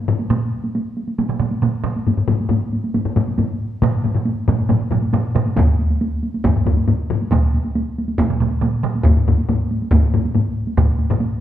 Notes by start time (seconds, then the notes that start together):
0.08 taiko low-mid
0.19 taiko high
0.30 taiko mid, taiko high
0.64 taiko high
0.75 taiko high
0.97 taiko high
1.08 taiko high
1.18 taiko mid, taiko high
1.29 taiko mid
1.40 taiko mid, taiko high
1.51 taiko high
1.62 taiko mid, taiko high
1.84 taiko mid
1.96 taiko high
2.07 taiko low-mid, taiko high
2.17 taiko low-mid
2.28 taiko low-mid, taiko high
2.41 taiko high
2.49 taiko low-mid, taiko high
2.73 taiko high
2.84 taiko high
2.94 taiko low-mid, taiko high
3.05 taiko low-mid
3.16 taiko low-mid, taiko high
3.28 taiko high
3.38 taiko low-mid, taiko high
3.82 taiko low-mid, taiko mid, taiko high
4.04 taiko low-mid, taiko mid, taiko high
4.15 taiko low-mid, taiko mid
4.25 taiko high
4.48 taiko low-mid, taiko mid, taiko high
4.59 taiko high
4.69 taiko low-mid, taiko mid, taiko high
4.91 taiko low-mid, taiko mid, taiko high
5.02 taiko high
5.13 taiko low-mid, taiko mid, taiko high
5.35 taiko low-mid, taiko mid, taiko high
5.46 taiko high
5.56 taiko, taiko low-mid, taiko high
5.79 taiko high
5.90 taiko high
6.01 taiko high
6.23 taiko high
6.34 taiko high
6.44 taiko, taiko low-mid, taiko high
6.56 taiko low-mid
6.66 taiko low-mid, taiko high
6.77 taiko high
6.88 taiko low-mid, taiko high
7.10 taiko low-mid
7.22 taiko high
7.32 taiko, taiko mid, taiko high
7.54 taiko high
7.65 taiko high
7.75 taiko high
7.98 taiko high
8.08 taiko high
8.18 taiko, taiko mid, taiko high
8.30 taiko mid
8.40 taiko mid, taiko high
8.51 taiko high
8.62 taiko mid, taiko high
8.83 taiko mid
8.95 taiko high
9.05 taiko, taiko low-mid, taiko high
9.17 taiko low-mid
9.28 taiko low-mid, taiko high
9.38 taiko high
9.49 taiko low-mid, taiko high
9.71 taiko high
9.82 taiko high
9.91 taiko, taiko low-mid, taiko high
10.03 taiko low-mid
10.14 taiko low-mid, taiko high
10.25 taiko high
10.35 taiko low-mid, taiko high
10.67 taiko high
10.78 taiko, taiko low-mid, taiko mid, taiko high
10.99 taiko high
11.10 taiko low-mid, taiko mid, taiko high
11.20 taiko high